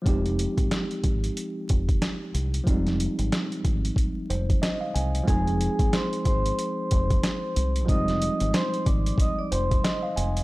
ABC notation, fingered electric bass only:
X:1
M:4/4
L:1/16
Q:"Swing 16ths" 1/4=92
K:Fm
V:1 name="Fingered electric bass" clef=bass
F,,,3 A,,, z2 A,,,2 z2 F,,,2 z2 C,,2 | F,,,3 A,,, z2 A,,,2 z2 F,,,2 z2 C,,2 | F,,,3 A,,, z2 A,,,2 z2 F,,,2 z2 C,,2 | F,,,3 A,,, z2 A,,,2 z2 F,,,2 z2 F,,,2 |]